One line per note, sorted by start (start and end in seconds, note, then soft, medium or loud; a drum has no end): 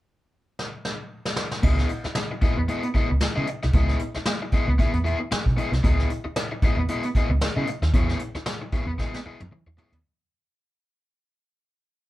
0.59 snare medium
0.85 snare medium
1.25 snare medium
1.36 snare loud
1.51 snare medium
1.63 1.83 C#2 loud
1.63 1.88 B3 medium
1.63 1.88 E4 medium
1.63 1.88 G#4 medium
1.63 1.88 D#5 medium
1.63 kick loud
1.63 crash medium
1.78 snare soft
1.89 closed hi-hat medium
2.04 muted fingered electric bass stroke soft
2.04 muted overdriven electric guitar stroke soft
2.04 snare soft
2.15 muted overdriven electric guitar stroke soft
2.15 snare loud
2.15 closed hi-hat medium
2.31 muted overdriven electric guitar stroke soft
2.41 2.60 B3 medium
2.41 2.57 E4 medium
2.41 2.57 G#4 medium
2.41 2.56 D#5 medium
2.41 muted fingered electric bass stroke soft
2.41 kick loud
2.41 closed hi-hat medium
2.57 2.66 E2 medium
2.57 muted overdriven electric guitar stroke soft
2.68 2.86 B3 medium
2.68 2.83 E4 medium
2.68 2.83 G#4 medium
2.68 2.82 D#5 loud
2.68 closed hi-hat medium
2.83 muted overdriven electric guitar stroke soft
2.83 closed hi-hat medium
2.94 3.09 B3 medium
2.94 3.10 E4 medium
2.94 3.09 G#4 medium
2.94 3.09 D#5 medium
2.94 muted fingered electric bass stroke soft
2.94 kick medium
2.94 closed hi-hat medium
3.10 3.19 C#2 medium
3.10 muted overdriven electric guitar stroke medium
3.20 muted overdriven electric guitar stroke soft
3.20 snare loud
3.20 closed hi-hat medium
3.36 3.45 C#3 medium
3.36 3.47 B3 medium
3.36 3.48 E4 medium
3.36 3.48 G#4 medium
3.36 3.48 D#5 medium
3.47 muted overdriven electric guitar stroke soft
3.47 closed hi-hat medium
3.63 3.72 C2 medium
3.63 muted overdriven electric guitar stroke soft
3.63 snare soft
3.73 3.93 C#2 loud
3.73 3.99 B3 medium
3.73 3.99 E4 loud
3.73 3.99 G#4 medium
3.73 3.99 D#5 loud
3.73 kick loud
3.73 closed hi-hat medium
3.89 snare soft
3.99 closed hi-hat medium
4.14 muted fingered electric bass stroke medium
4.14 muted overdriven electric guitar stroke soft
4.14 snare soft
4.26 muted overdriven electric guitar stroke soft
4.26 snare loud
4.26 closed hi-hat loud
4.42 muted overdriven electric guitar stroke medium
4.52 4.71 B3 medium
4.52 4.68 E4 medium
4.52 4.67 G#4 loud
4.52 4.67 D#5 loud
4.52 muted fingered electric bass stroke medium
4.52 kick medium
4.52 closed hi-hat medium
4.68 4.76 C#2 medium
4.68 muted overdriven electric guitar stroke soft
4.79 4.97 B3 medium
4.79 4.93 E4 medium
4.79 4.93 G#4 medium
4.79 4.93 E5 medium
4.79 muted fingered electric bass stroke soft
4.79 kick medium
4.79 closed hi-hat medium
4.94 5.13 E2 medium
4.94 muted overdriven electric guitar stroke medium
4.94 closed hi-hat medium
5.04 5.19 B3 medium
5.04 5.19 E4 medium
5.04 5.19 G#4 medium
5.04 5.19 E5 medium
5.04 closed hi-hat medium
5.20 muted overdriven electric guitar stroke soft
5.31 muted overdriven electric guitar stroke soft
5.31 muted fingered electric bass stroke soft
5.31 snare loud
5.31 closed hi-hat medium
5.46 5.55 B1 loud
5.46 kick medium
5.57 5.72 B3 medium
5.57 5.72 E4 medium
5.57 5.71 G#4 medium
5.57 5.71 D#5 medium
5.57 closed hi-hat medium
5.72 5.81 C2 medium
5.72 muted overdriven electric guitar stroke soft
5.72 snare soft
5.72 closed hi-hat soft
5.83 6.03 C#2 loud
5.83 6.08 B3 medium
5.83 6.09 E4 medium
5.83 6.09 G#4 loud
5.83 6.09 D#5 medium
5.83 kick loud
5.83 closed hi-hat medium
5.99 snare soft
6.10 closed hi-hat medium
6.24 muted overdriven electric guitar stroke soft
6.24 muted fingered electric bass stroke soft
6.36 muted overdriven electric guitar stroke soft
6.36 snare loud
6.36 closed hi-hat loud
6.51 muted overdriven electric guitar stroke medium
6.62 6.81 B3 loud
6.62 6.78 E4 loud
6.62 6.77 G#4 loud
6.62 6.77 D#5 loud
6.62 muted fingered electric bass stroke soft
6.62 kick loud
6.62 closed hi-hat medium
6.77 6.86 E2 medium
6.77 muted overdriven electric guitar stroke soft
6.88 7.07 B3 medium
6.88 7.05 E4 medium
6.88 7.04 G#4 medium
6.88 7.03 D#5 loud
6.88 closed hi-hat medium
7.03 muted overdriven electric guitar stroke soft
7.03 closed hi-hat medium
7.15 7.30 B3 medium
7.15 7.30 E4 medium
7.15 7.30 G#4 medium
7.15 7.29 D#5 medium
7.15 muted fingered electric bass stroke soft
7.15 kick medium
7.15 closed hi-hat medium
7.29 7.38 C#2 medium
7.29 muted overdriven electric guitar stroke medium
7.41 muted overdriven electric guitar stroke soft
7.41 snare loud
7.41 closed hi-hat medium
7.56 7.65 C#3 loud
7.56 7.68 B3 medium
7.56 7.68 E4 medium
7.56 7.68 G#4 medium
7.56 7.69 D#5 medium
7.67 muted overdriven electric guitar stroke soft
7.67 closed hi-hat medium
7.82 7.91 D#2 medium
7.82 muted overdriven electric guitar stroke medium
7.82 snare soft
7.82 closed hi-hat soft
7.93 8.13 E2 loud
7.93 8.19 B3 medium
7.93 8.19 E4 medium
7.93 8.19 G#4 medium
7.93 8.19 C#5 medium
7.93 kick loud
7.93 closed hi-hat medium
8.09 snare soft
8.19 closed hi-hat medium
8.35 muted fingered electric bass stroke soft
8.35 muted overdriven electric guitar stroke soft
8.35 snare soft
8.46 muted overdriven electric guitar stroke soft
8.46 snare loud
8.46 closed hi-hat loud
8.62 muted overdriven electric guitar stroke soft
8.72 8.91 B3 medium
8.72 8.87 E4 loud
8.72 8.86 G#4 loud
8.72 8.86 C#5 loud
8.72 muted fingered electric bass stroke soft
8.72 kick medium
8.72 closed hi-hat medium
8.87 8.95 E2 medium
8.87 muted overdriven electric guitar stroke soft
8.98 9.17 B3 medium
8.98 9.14 E4 medium
8.98 9.14 G#4 medium
8.98 9.14 D#5 medium
8.98 kick medium
8.98 snare medium
9.14 muted overdriven electric guitar stroke soft
9.14 snare medium
9.26 9.40 B3 medium
9.26 9.40 E4 medium
9.26 9.40 G#4 medium
9.26 9.41 D#5 medium
9.26 muted fingered electric bass stroke soft
9.40 9.49 F#2 medium
9.40 muted overdriven electric guitar stroke soft
9.40 high tom medium
9.52 9.62 E3 loud
9.52 muted overdriven electric guitar stroke soft
9.66 9.75 E2 medium
9.66 muted overdriven electric guitar stroke soft
9.77 9.95 B3 medium
9.77 9.93 E4 medium
9.77 9.92 G#4 medium
9.77 9.92 C#5 medium
9.77 floor tom loud
9.92 10.01 D#2 medium
9.92 muted overdriven electric guitar stroke soft
9.92 floor tom medium